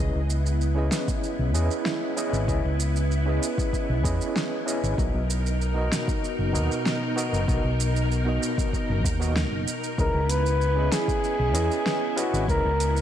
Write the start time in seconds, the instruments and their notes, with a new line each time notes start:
Already playing: tine electric piano C#4 E4 G#4 B4
0.00 fingered electric bass C#2, string machine B3 E4, tine electric piano D#5
0.14 fingered electric bass C#2
0.30 shaker
0.46 shaker
0.61 shaker
0.75 tine electric piano C#4 E4 G#4 B4 D#5
0.92 snare, shaker
1.08 kick, shaker
1.24 shaker
1.39 fingered electric bass B1
1.54 fingered electric bass E2, tine electric piano C#4 E4 G#4 B4 D#5, shaker
1.71 shaker
1.86 snare, shaker
2.16 tine electric piano C#4 E4 G#4 B4 D#5, shaker
2.33 fingered electric bass G#1, shaker
2.48 fingered electric bass C#2, tine electric piano C#4 E4 G#4 B4 D#5, kick, shaker
2.64 fingered electric bass C#2
2.80 shaker
2.96 shaker
3.11 shaker
3.26 tine electric piano C#4 E4 G#4 B4 D#5
3.43 shaker
3.58 kick, shaker
3.73 kick, shaker
3.90 fingered electric bass B1
4.03 fingered electric bass E2, tine electric piano C#4 E4 G#4 B4 D#5, kick, shaker
4.21 shaker
4.36 snare, shaker
4.66 tine electric piano C#4 E4 G#4 B4 D#5, shaker
4.83 fingered electric bass G#1, shaker
4.97 fingered electric bass B1, string machine B2 D#4 A#4, tine electric piano B3 D#4 F#4 A#4 D#5, kick, shaker
5.14 fingered electric bass B1
5.30 shaker
5.46 shaker
5.61 shaker
5.74 tine electric piano B3 D#4 F#4 A#4 D#5
5.92 snare, shaker
6.08 kick, shaker
6.24 shaker
6.39 fingered electric bass F#1
6.53 fingered electric bass D#2, tine electric piano B3 D#4 F#4 A#4 D#5, shaker
6.72 shaker
6.86 snare, shaker
7.16 tine electric piano B3 D#4 F#4 A#4 D#5, shaker
7.33 fingered electric bass F#1, shaker
7.47 fingered electric bass B1, tine electric piano B3 D#4 F#4 A#4 D#5, kick, shaker
7.64 fingered electric bass B1
7.80 shaker
7.96 shaker
8.12 shaker
8.25 tine electric piano B3 D#4 F#4 A#4 D#5
8.43 shaker
8.58 kick, shaker
8.73 kick, shaker
8.89 fingered electric bass F#1
9.04 fingered electric bass D#2, kick, shaker
9.20 tine electric piano B3 D#4 F#4 A#4 D#5, shaker
9.36 snare, shaker
9.52 fingered electric bass F#1
9.68 shaker
9.84 shaker
9.98 fingered electric bass C#2, string machine B3 E4, tine electric piano C#4 E4 G#4 B4 D#5, flugelhorn A#4, kick, shaker
10.14 fingered electric bass C#2
10.29 flugelhorn B4, closed hi-hat, shaker
10.46 shaker
10.61 shaker
10.75 tine electric piano C#4 E4 G#4 B4 D#5
10.92 flugelhorn G#4, snare, closed hi-hat, shaker
11.08 kick, shaker
11.24 shaker
11.39 fingered electric bass B1
11.53 fingered electric bass E2, tine electric piano C#4 E4 G#4 B4 D#5, closed hi-hat, shaker
11.72 shaker
11.86 snare, shaker
12.16 tine electric piano C#4 E4 G#4 B4 D#5, flugelhorn F#4, closed hi-hat, shaker
12.33 fingered electric bass G#1, shaker
12.48 fingered electric bass C#2, tine electric piano C#4 E4 G#4 B4 D#5, flugelhorn A#4, kick, shaker
12.65 fingered electric bass C#2
12.80 closed hi-hat, shaker
12.97 shaker